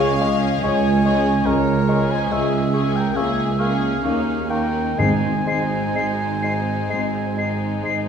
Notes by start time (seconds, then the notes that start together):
Already playing: C#2 G#3 C#4 G#4 C#5 F5
0.21 G#3 C#4 G#4 C#6
0.62 C#2 G#3 C#5 G#5 C#6
1.04 G#3 C#4 G#4 C#6
1.46 C#2 G#3 C#4 A#4 C#5 C#6
1.89 G#3 C#4 G#4 C#6
2.11 C5 G#5
2.31 C#2 G#3 G#4 E5 C#6
2.73 G#3 C#4 G#4 C#6
2.96 A#4 G5
3.15 C#2 A#3 C#4 G#4 E5 C#6
3.59 A#3 C#4 G#4 F5 C#6
4.03 D#2 A#3 C#4 D#4 C#6
4.50 A#3 C#4 D#4 A#4 G5 C#6
4.98 G#1 G#2 G#3 C4 D#4 C5 G#5 C7
5.47 G#3 C4 D#4 C7
5.95 G#1 G#2 G#3 C7
6.43 G#3 C4 D#4 C7
6.90 G#1 G#2 G#3 C4 C7
7.37 G#3 C4 D#4 C7
7.83 G#1 G#2 G#3 C7